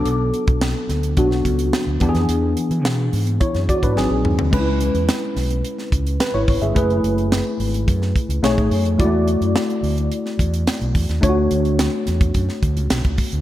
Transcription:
<<
  \new Staff \with { instrumentName = "Tine electric piano" } { \time 4/4 \key cis \phrygian \tempo 4 = 107 << { r1 | r2 <e' cis''>8 <fis' d''>16 <d' b'>8 r8. | r2. b'16 <e' cis''>8 <gis' e''>16~ | <gis' e''>16 r2. r8. |
r1 | r1 | } \\ { <fis b d' a'>2 <fis b d' fis'>4. <e b d' g' gis'>8~ | <e b d' g' gis'>2. <fis bis dis' gis'>4 | <gis cis' d' e' b'>1 | <a e' gis' b'>2. <a dis' gis' cis''>4 |
<gis a e' fis' d''>1 | <a d' eis' fis' cis''>1 | } >> }
  \new Staff \with { instrumentName = "Fingered electric bass" } { \clef bass \time 4/4 \key cis \phrygian b,,8 r16 b,,8 r16 d,8 b,,8 cis,8 r16 d,16 e,16 eis,16 | e,8 r16 e16 b,8 gis,8 r16 fis,16 r16 gis,16 gis,,16 ais,,16 dis,16 d,16 | cis,8. e,16 r8 b,,8 r8 cis,8 r16 gis,,16 gis,,16 g,,16 | fis,,8 fis,,8. r16 gis,,8 fis,8 r16 cis,16 b,,16 a,,16 fis,16 eis,16 |
e,8. fis,16 r8 d,8 r8 e,8 r16 b,,16 e,16 dis,16 | d,8 d,8. r16 e,8 fis,16 r16 d,16 cis,16 b,,16 cis,16 r16 d,16 | }
  \new DrumStaff \with { instrumentName = "Drums" } \drummode { \time 4/4 hh8 hh16 <hh bd>16 sn8 <hh sn>16 hh16 <hh bd>16 sn16 <hh bd>16 hh16 sn8 <hh bd>16 <hh sn>16 | hh8 hh16 hh16 sn8 hho16 hh16 <hh bd>16 <hh sn>16 <hh bd>16 <hh bd>16 sn8 toml16 tomfh16 | <cymc bd>8 hh16 hh16 <hh sn>8 <hho sn>16 hh16 hh16 sn16 <hh bd>16 hh16 <hh sn>8 <hho bd>16 hh16 | <hh bd>16 hh16 hh16 hh16 <hh sn>8 hho16 hh16 <hh bd>16 sn16 <hh bd>16 hh16 <hh sn>16 <hh bd>16 hho16 hh16 |
<hh bd>8 hh16 hh16 <hh sn>16 hh16 hho16 hh16 hh16 sn16 <hh bd>16 hh16 <hh sn>16 hh16 <hho bd>16 <hh sn>16 | <hh bd>8 hh16 hh16 <hh sn>8 <hh sn>16 <hh bd>16 <hh bd>16 sn16 <hh bd>16 hh16 <hh sn>16 <hh bd>16 <hho bd>16 hh16 | }
>>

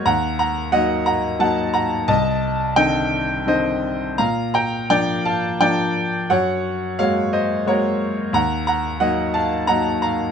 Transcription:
<<
  \new Staff \with { instrumentName = "Grand piano" } { \time 3/4 \key ees \lydian \tempo 4 = 88 <ges'' bes''>8 <ges'' bes''>8 <ees'' ges''>8 <ges'' bes''>8 <ges'' a''>8 <ges'' bes''>8 | <ees'' a''>4 <ees'' g''>4 <c'' ees''>4 | <f'' bes''>8 <g'' bes''>8 <d'' g''>8 <f'' a''>8 <d'' g''>4 | <des'' ges''>4 <des'' f''>8 <c'' ees''>8 <bes' des''>4 |
<ges'' bes''>8 <ges'' bes''>8 <ees'' ges''>8 <f'' a''>8 <ges'' bes''>8 <f'' bes''>8 | }
  \new Staff \with { instrumentName = "Grand piano" } { \time 3/4 \key ees \lydian ees,4 <ges bes ees'>4 <ges bes ees'>4 | c,4 <d ees c'>4 <d ees c'>4 | bes,4 <f bes d'>4 <f bes d'>4 | ges,4 <aes bes ges'>4 <aes bes ges'>4 |
ees,4 <ges bes ees'>4 <ges bes ees'>4 | }
>>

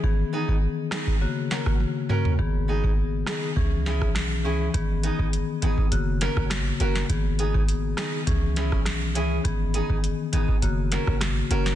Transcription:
<<
  \new Staff \with { instrumentName = "Nylon-string guitar" } { \time 4/4 \key gis \minor \tempo 4 = 102 r8 <b dis' gis'>8 r8 <b dis' gis'>8 r8 <cis' fis' ais'>8 r8 <cis' fis' ais'>8 | r8 <b dis' gis'>8 r8 <b dis' gis'>8 r8 <cis' e' gis'>8 r8 <cis' e' gis'>8 | r8 <b dis' gis'>8 r8 <b dis' gis'>8 r8 <cis' fis' ais'>8 r8 <cis' fis' ais'>8 | r8 <b dis' gis'>8 r8 <b dis' gis'>8 r8 <cis' e' gis'>8 r8 <cis' e' gis'>8 |
r8 <b dis' gis'>8 r8 <b dis' gis'>8 r8 <cis' fis' ais'>8 r8 <cis' fis' ais'>8 | }
  \new Staff \with { instrumentName = "Marimba" } { \time 4/4 \key gis \minor <dis b gis'>16 r8 <dis b gis'>16 r8 <dis b gis'>16 r16 <cis ais fis'>8. <cis ais fis'>16 r8 <cis ais fis'>16 r16 | <dis b gis'>16 r8 <dis b gis'>16 r8 <dis b gis'>16 r16 <e cis' gis'>8. <e cis' gis'>16 r8 <e cis' gis'>16 r16 | <dis b gis'>16 r8 <dis b gis'>16 r8 <dis b gis'>16 r16 <cis ais fis'>8. <cis ais fis'>16 r8 <cis ais fis'>16 r16 | <dis b gis'>16 r8 <dis b gis'>16 r8 <dis b gis'>16 r16 <e cis' gis'>8. <e cis' gis'>16 r8 <e cis' gis'>16 r16 |
<dis b gis'>16 r8 <dis b gis'>16 r8 <dis b gis'>16 r16 <cis ais fis'>8. <cis ais fis'>16 r8 <cis ais fis'>16 r16 | }
  \new Staff \with { instrumentName = "808-style bass" } { \clef bass \time 4/4 \key gis \minor r1 | gis,,4. r8 cis,8. b,,8. cis,8 | gis,,8. gis,,8 r16 gis,,16 r16 fis,,8. gis,,8. fis,,8 | gis,,4. r8 cis,8. b,,8. cis,8 |
gis,,8. gis,,8 r16 gis,,16 r16 fis,,8. gis,,8. fis,,8 | }
  \new DrumStaff \with { instrumentName = "Drums" } \drummode { \time 4/4 bd8. bd16 r8 <ss sn>16 bd16 r8 sn16 <bd ss>16 tommh8 toml16 tomfh16 | bd8. bd16 r8 <ss sn>8 bd8 sn16 <bd ss>16 <ss sn>4 | <hh bd>8 hh16 bd16 hh8 hh16 bd16 hh8 <hh sn>16 <bd ss>16 <hh ss sn>8 hh16 sn16 | <hh bd>8 hh16 bd16 hh8 <hh ss sn>8 <hh bd>8 <hh sn>16 <bd ss>16 <hh ss sn>8 hh8 |
<hh bd>8 hh16 bd16 hh8 hh16 bd16 hh8 <hh sn>16 <bd ss>16 <hh ss sn>8 hh16 sn16 | }
>>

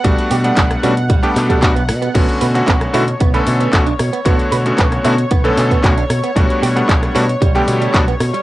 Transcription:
<<
  \new Staff \with { instrumentName = "Analog synth pad" } { \time 4/4 \key b \minor \tempo 4 = 114 fis''1 | cis''1~ | cis''1~ | cis''1 | }
  \new Staff \with { instrumentName = "Clean electric guitar" } { \time 4/4 \key b \minor g16 r16 g'16 r16 g16 r16 cis'16 r16 g16 g'16 r16 g16 r16 b16 r16 b16 | b16 r16 b'16 r16 b16 r16 e'16 r16 b16 b'16 r16 b16 r16 d'16 r16 b16 | b16 r16 b'16 r16 b16 r16 e'16 r16 b16 b'16 r16 b16 r16 d'16 r16 b16 | g16 r16 g'16 r16 g16 r16 cis'16 r16 g16 g'16 r16 g16 r16 b16 r16 g16 | }
  \new Staff \with { instrumentName = "Electric grand piano" } { \time 4/4 \key b \minor <g a b d' fis'>8. <g a b d' fis''>8. <g a b d' fis'>16 r8 <g a b d' g'>8 <g a b d' a'>16 <g a b d' fis'>16 r8. | <d a b cis' fis'>8. <d a b cis' fis'>8. <d a b cis' fis'>16 r8 <d a b cis' a'>8. <d a b cis' fis'>16 r8. | <d a b fis' cis''>8. <d a b cis' fis'>8. <d a b cis' fis'>16 r8 <d a b cis' a'>8. <d a b cis' fis'>16 r8. | <g a b d' fis'>8. <g a b d' fis''>8. <g a b d' fis'>16 r8 <d g a b g'>8. <g a b d' fis'>16 r8. | }
  \new Staff \with { instrumentName = "Picked electric bass" } { \clef bass \time 4/4 \key b \minor b,,8 b,8 b,,8 b,8 b,,8 b,8 b,,8 b,8 | b,,8 b,8 b,,8 b,8 b,,8 b,8 b,,8 b,8 | b,,8 b,8 b,,8 b,8 b,,8 b,8 b,,8 b,8 | b,,8 b,8 b,,8 b,8 b,,8 b,8 b,,8 b,8 | }
  \new DrumStaff \with { instrumentName = "Drums" } \drummode { \time 4/4 <hh bd>16 hh16 hho16 hh16 <hc hh bd>16 <hh ss>16 hho16 hh16 <hh bd>16 hh16 <hc hho>16 <hh bd>16 <hc hh bd>16 hh16 <hho ss>16 hh16 | <cymc hh bd>16 hh16 hho16 hh16 <hc hh bd>16 <hh ss>16 hho16 hh16 <hh bd>16 hh16 hho16 hh16 <hc hh bd>16 hh16 <hho ss>16 hh16 | <hh bd>16 hh16 hho16 hh16 <hc hh bd>16 <hh ss>16 hho16 hh16 <hh bd>16 hh16 <hc hho>16 <hh bd>16 <hc hh bd>16 hh16 <hho ss>16 hh16 | <hh bd>16 hh16 hho16 hh16 <hc hh bd>16 <hh ss>16 hho16 hh16 <hh bd>16 hh16 hho16 hh16 <hc hh bd>16 hh16 <hho ss>16 hh16 | }
>>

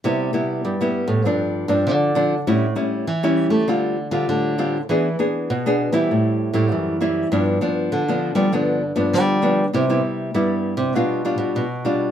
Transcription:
<<
  \new Staff \with { instrumentName = "Nylon-string guitar" } { \time 4/4 \key c \major \tempo 4 = 99 << { <g b e'>8 <g b e'>8. <g b e'>8. <f c' d'>8. <f c' d'>8. <f c' d'>16 r16 | <g cis' e'>16 r16 <g cis' e'>8 r16 <g cis' e'>8. <g c' f'>8 r16 <g c' f'>8. <g c' f'>16 r16 | <b d' gis'>16 r16 <b d' gis'>8 r16 <b d' gis'>8 <g c' e'>4 <g c' e'>8. <g c' e'>8 | <f b d'>8 <f b d'>8. <f b d'>8 <f b d'>16 <f b d'>8 r16 <f b d'>8. <f b d'>16 r16 |
<g b e'>16 <g b e'>8. <g b e'>8. r16 <g d' f'>8 <g d' f'>8. r16 <g d' f'>8 | } \\ { c4 g,4 g,4 d4 | a,4 e4 d4 a,4 | e4 b,4 a,4 e4 | g,4 d4 g,4 d4 |
c4 g,4 b,4 b,4 | } >> }
  \new Staff \with { instrumentName = "Nylon-string guitar" } { \clef bass \time 4/4 \key c \major c8 r8 g8. a,16 g,8. g,16 d4 | a,8 r8 e8. a16 d8. d16 d4 | e8 r8 b,8. e16 a,8. a,16 fis,4 | g,8 r8 d8. g16 d8. g,16 g4 |
c8 r8 g8. c16 b,8. b,16 b,4 | }
>>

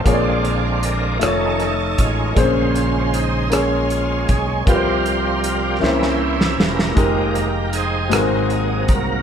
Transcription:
<<
  \new Staff \with { instrumentName = "String section" } { \time 6/8 \key f \minor \tempo 4. = 52 << { <d'' bes''>4. <ees'' des'''>4. | <des' aes'' c'''>2. | <f'' g'' c'''>4. <des' e'' c'''>4. | <ees'' g''>4. <c'' ges''>4. | } \\ { <f'' aes''>4. a''4. | bes''2. | bes''2. | f''2. | } >> }
  \new Staff \with { instrumentName = "Grand piano" } { \time 6/8 \key f \minor <bes f' aes' des'' d''>4 r8 <a ees' f' des''>4 r8 | <bes c' des' aes' c''>4 r8 <bes des' aes' des''>4 r8 | <bes f' g' b' c''>4 r8 <bes des' e' c''>4 r8 | <aes ees' g' bes'>4 r8 <aes c' ges' bes'>4 r8 | }
  \new Staff \with { instrumentName = "Grand piano" } { \clef bass \time 6/8 \key f \minor bes,4. r4. | bes,4. r4. | c4. c4. | r4. aes,4. | }
  \new Staff \with { instrumentName = "Tonewheel organ" } { \time 6/8 \key f \minor << { f'4 bes'8 a'4 f'8~ | f'4 ees'8 f'4 aes'8 | c''4 f'8 g'4 bes'8~ | bes'4 c''4 r8 bes'8 | } \\ { d'4. ees'4 <aes des'>8~ | <aes des'>4 r8 <aes des'>4. | <f' g'>4. e'4 g'8~ | g'4 <ees' aes'>4. r8 | } >> }
  \new Staff \with { instrumentName = "Tonewheel organ" } { \clef bass \time 6/8 \key f \minor <d aes c'>4. <ees a des'>8 r4 | <des aes c''>4. r4. | <f g bes>4. <e bes des'>4. | <ees f aes bes>8 r4 <c ges bes>4. | }
  \new Staff \with { instrumentName = "Fingered electric bass" } { \clef bass \time 6/8 \key f \minor bes,,4. f,,4 a,,8 | bes,,2~ bes,,8 b,,8 | c,4. c,4 e,,8 | f,,4. aes,,4 c,8 | }
  \new DrumStaff \with { instrumentName = "Drums" } \drummode { \time 6/8 <hh bd>8 hh8 hh8 <hh ss>8 <hh ss>8 <hh bd>8 | <hh bd>8 <hh ss>8 hh8 <hh ss>8 hh8 <hh bd>8 | <hh bd>8 hh8 hh8 sn16 sn8 sn16 sn16 sn16 | <hh bd>8 <hh ss>8 hh8 <hh ss>8 hh8 <hh bd>8 | }
>>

